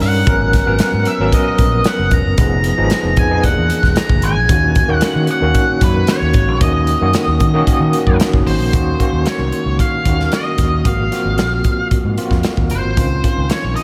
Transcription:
Already playing: G3 C#4 D#4 A#4
0.00 G2 F#5, snare, open hi-hat
0.26 G#1 F#3 B3 C#4 A#4, kick, closed hi-hat
0.53 kick, snare, closed hi-hat
0.66 G#1 F#3 B3 C#4 A#4
0.79 muted fingered electric bass stroke, snare, closed hi-hat
0.93 G#2
1.05 E5, closed hi-hat
1.19 G#1 F#3 B3 C#4 A#4
1.32 D#5, kick, closed hi-hat
1.58 A#1, kick, closed hi-hat
1.84 F#5, snare, closed hi-hat
1.99 F#1
2.11 E1 A#5, kick, closed hi-hat
2.25 F#1
2.38 F1 F3 B3 D#4 G#4, kick, closed hi-hat
2.64 closed hi-hat
2.77 G#1 F3 B3 D#4 G#4
2.90 snare, closed hi-hat
3.04 F1
3.17 F2 G#5, kick, closed hi-hat
3.30 F3 B3 D#4 G#4
3.43 E1 E3 A#3 D4 G4 F#5, kick, closed hi-hat
3.51 G#4
3.58 E2
3.70 closed hi-hat
3.83 E1, kick, snare
3.96 A#5, snare, closed hi-hat
4.09 F#1, kick
4.22 G#1 G#5, closed hi-hat
4.36 A#1
4.49 D#2 D#3 A#3 C#4 F#4, kick, closed hi-hat
4.75 kick, closed hi-hat
4.88 D#2 D#3 A#3 C#4 F#4
4.95 F#5
5.01 muted fingered electric bass stroke, snare, closed hi-hat
5.15 D#3
5.27 F#5, closed hi-hat
5.41 D#2 D#3 A#3 C#4 F#4
5.55 kick, closed hi-hat
5.81 F#2 B4, kick, closed hi-hat
6.07 C#5, snare, closed hi-hat
6.22 D#2
6.33 G#1, kick, closed hi-hat
6.48 A#1
6.60 D#2 D#3 A#3 C#4 F#4 D#5, kick, closed hi-hat
6.87 closed hi-hat
7.01 F#2 D#3 A#3 C#4 F#4
7.13 snare, closed hi-hat
7.27 D#2
7.40 D#3, kick, closed hi-hat
7.54 D#3 A#3 C#4 F#4
7.67 muted fingered electric bass stroke, kick, closed hi-hat
7.80 D#3
7.93 closed hi-hat
8.07 F#2, kick
8.20 snare, closed hi-hat
8.33 F#1, kick
8.46 G#1 C5, open hi-hat
8.59 A#1
8.73 D#2 D#3 A#3 C#4 F#4, kick, closed hi-hat
9.00 D#3 A#3 C#4 F#4, kick, closed hi-hat
9.12 D#2
9.26 C#5, snare, closed hi-hat
9.39 C2
9.52 closed hi-hat
9.66 C#2
9.79 F5, kick, closed hi-hat
10.05 D#2 D#3 A#3 C#4 F#4, kick, closed hi-hat
10.20 snare
10.32 D#5, snare, closed hi-hat
10.58 D#2, kick, snare, closed hi-hat
10.84 G#1 F3 A#3 C4 F#4 F5, kick, closed hi-hat
11.11 A#3 C4 F4 F#4, snare, closed hi-hat
11.25 G#1
11.38 A#1, snare, closed hi-hat
11.64 kick, closed hi-hat
11.91 muted fingered electric bass stroke, kick, closed hi-hat
12.04 G#2
12.18 A#3 C4 F4, closed hi-hat
12.25 F#4
12.31 F2, kick, snare
12.43 snare, closed hi-hat
12.57 D#2, kick
12.70 F#1 C5, closed hi-hat
12.84 G#1
12.96 C#2 D#3 C4 C#4 F4, kick, closed hi-hat
13.23 D#3 C4 C#4 F4, kick, closed hi-hat
13.38 C#2
13.50 C#5, snare, closed hi-hat
13.64 A#1
13.76 D#5, closed hi-hat

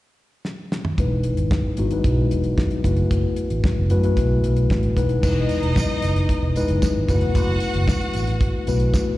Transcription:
0.45 snare
0.72 snare
0.85 mid tom
0.98 E1 G#3 B3 D#4 E4 B4, kick, closed hi-hat
1.23 closed hi-hat
1.37 G#1, closed hi-hat
1.51 kick, snare
1.77 G#1 G#3 B3 D#4 E4 F#4, closed hi-hat
1.91 F#3 B3 D#4 E4 B4, closed hi-hat
1.98 G#3
2.04 B1, kick, closed hi-hat
2.31 E1, closed hi-hat
2.44 closed hi-hat
2.58 kick, snare
2.71 closed hi-hat
2.84 F#1 A3 B3 E4 F#4 B4, kick, closed hi-hat
2.96 closed hi-hat
3.11 F#1, kick, closed hi-hat
3.36 closed hi-hat
3.50 A1, closed hi-hat
3.64 kick, snare
3.77 F#1
3.90 F#2 A3 B3 E4 F#4 B4, closed hi-hat
4.03 A3 B3 E4 F#4 B4, closed hi-hat
4.17 B1, kick, closed hi-hat
4.43 B1, closed hi-hat
4.56 closed hi-hat
4.70 A1, kick, snare
4.83 closed hi-hat
4.96 E1 G#3 B3 D#4 E4 B4, kick, closed hi-hat
5.09 closed hi-hat
5.23 E1 G3 B3 D#4 E4 B4 D#5, kick, crash, tambourine
5.29 G#3
5.49 closed hi-hat, tambourine
5.63 E1, closed hi-hat
5.76 kick, snare, tambourine
6.02 F#1, closed hi-hat, tambourine
6.16 snare, closed hi-hat
6.29 kick, closed hi-hat
6.42 E1
6.56 G#3 B3 D#4 E4 B4, closed hi-hat, tambourine
6.68 F#1, closed hi-hat
6.82 kick, snare, tambourine
6.96 G#1
7.08 F#1 A3 B3 E4 F#4 B4 F#5, kick, closed hi-hat, tambourine
7.21 E1, closed hi-hat
7.35 F#1, kick, closed hi-hat, tambourine
7.60 closed hi-hat, tambourine
7.74 F#1, closed hi-hat
7.88 kick, snare, tambourine
8.01 closed hi-hat
8.13 A1, closed hi-hat, tambourine
8.27 snare, closed hi-hat
8.41 kick, closed hi-hat
8.67 B1 A3 B3 E4 F#4 B4, closed hi-hat, tambourine
8.80 closed hi-hat
8.94 kick, snare, tambourine

